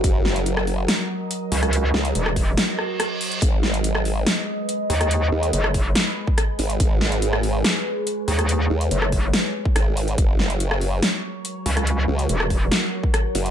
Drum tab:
HH |x--xx-o-x---x-ox|x--xx-o-x---x-ox|x--xx-o-x---x-ox|x--xx-o-x---x-ox|
SD |--o--r--o------r|--o--r--o-r-r---|--o--r--o------r|-----r--o---r---|
BD |o---------------|------o---------|o---------------|------o----o----|

HH |x--xx-o-x---x-ox|x--xx-o-x---x-ox|x--xx-o-x---x-ox|x--xx-o-x---x-ox|
SD |--o--r--o------r|-----r--o---r---|--o--r--o------r|-----r--o---r---|
BD |o---------------|------o----o----|o---------------|------o----o----|